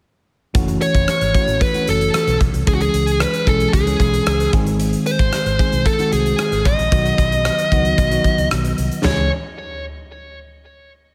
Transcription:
0.54 F#1 E3 A3 C#4 F#4, kick, closed hi-hat
0.68 closed hi-hat
0.81 C#5, closed hi-hat
0.95 F#1, kick, closed hi-hat
1.08 cross-stick, closed hi-hat
1.21 G#1, closed hi-hat
1.34 E3 A3 C#4 F#4, kick, closed hi-hat
1.48 A1, closed hi-hat
1.61 B4, kick, closed hi-hat
1.74 E3 A3 C#4 F#4, closed hi-hat
1.88 F#1 A4, closed hi-hat
2.01 closed hi-hat
2.14 cross-stick, closed hi-hat
2.27 B1, closed hi-hat
2.41 B1, kick, closed hi-hat
2.54 C2, closed hi-hat
2.67 C#2 E3 G#3 C#4 G#4, kick, closed hi-hat
2.75 F#4
2.81 G#4, closed hi-hat
2.93 C#2, closed hi-hat
3.07 closed hi-hat
3.20 B4, cross-stick, closed hi-hat
3.34 closed hi-hat
3.46 B1 E3 G#3 C#4 G#4 A4, kick, closed hi-hat
3.60 closed hi-hat
3.73 C#2 G#4, kick, closed hi-hat
3.86 E3 G#3 C#4 G#4, closed hi-hat
4.00 B1, kick, closed hi-hat
4.14 closed hi-hat
4.26 C#2, cross-stick, closed hi-hat
4.40 closed hi-hat
4.53 G#1 D#3 G#3 C4 G#4, kick, closed hi-hat
4.67 closed hi-hat
4.80 closed hi-hat
4.93 closed hi-hat
5.06 C5, closed hi-hat
5.19 G#1, kick, closed hi-hat
5.33 cross-stick, closed hi-hat
5.46 G#1, closed hi-hat
5.59 D#3 G#3 C4 G#4, kick, closed hi-hat
5.72 B1, closed hi-hat
5.86 A4, kick, closed hi-hat
5.99 D#3 G#3 C4 F#4, closed hi-hat
6.12 C2 G#4, closed hi-hat
6.26 closed hi-hat
6.39 cross-stick, closed hi-hat
6.52 G#1, closed hi-hat
6.65 A1 D#5, kick, closed hi-hat
6.79 A#1, closed hi-hat
6.92 B1 D#3 F#3 B3 F#4, kick, closed hi-hat
7.05 closed hi-hat
7.18 B1, kick, closed hi-hat
7.32 closed hi-hat
7.45 cross-stick, closed hi-hat
7.58 closed hi-hat
7.71 C#2 D#3 F#3 B3 F#4, kick, closed hi-hat
7.85 closed hi-hat
7.98 B1, kick, closed hi-hat
8.11 D#3 F#3 B3 F#4, closed hi-hat
8.24 kick, closed hi-hat
8.38 C#2, closed hi-hat
8.51 B1, cross-stick, closed hi-hat
8.65 closed hi-hat
8.78 C2, closed hi-hat
8.91 closed hi-hat
9.04 C#2 E3 G#3 C#4 G#4 C#5, snare, floor tom, china

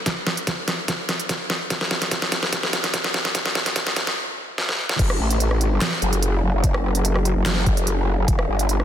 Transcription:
0.06 kick, snare, closed hi-hat
0.27 snare
0.37 closed hi-hat
0.47 kick, snare, closed hi-hat
0.68 snare, closed hi-hat
0.88 kick, snare, closed hi-hat
1.09 snare, closed hi-hat
1.20 closed hi-hat
1.29 kick, snare, closed hi-hat
1.50 snare
1.70 kick, snare, closed hi-hat
1.81 snare
1.91 snare
2.02 snare, closed hi-hat
2.11 kick, snare, closed hi-hat
2.22 snare
2.32 snare, closed hi-hat
2.43 snare
2.53 kick, snare, closed hi-hat
2.63 snare
2.73 snare, closed hi-hat
2.84 snare, closed hi-hat
2.94 kick, snare, closed hi-hat
3.04 snare
3.14 snare
3.25 snare
3.35 kick, snare, closed hi-hat
3.46 snare
3.55 snare
3.66 snare, closed hi-hat
3.76 kick, snare, closed hi-hat
3.87 snare
3.96 snare, closed hi-hat
4.07 snare
4.58 snare
4.69 snare
4.89 snare
4.99 F#1, kick, closed hi-hat, crash
5.10 cross-stick
5.20 A1
5.31 closed hi-hat
5.40 closed hi-hat
5.51 cross-stick
5.61 G#1, closed hi-hat
5.81 snare, clap, closed hi-hat
6.02 F#1, closed hi-hat
6.13 closed hi-hat
6.23 closed hi-hat
6.43 F#1
6.54 F#1
6.64 kick, closed hi-hat
6.74 cross-stick
6.95 closed hi-hat
7.05 closed hi-hat
7.16 cross-stick
7.25 closed hi-hat
7.36 F#1
7.46 snare, clap, closed hi-hat
7.66 kick, closed hi-hat
7.77 closed hi-hat
7.87 closed hi-hat
8.18 F#1
8.28 E1, kick, closed hi-hat
8.39 cross-stick
8.49 G1
8.59 closed hi-hat
8.69 closed hi-hat
8.80 cross-stick

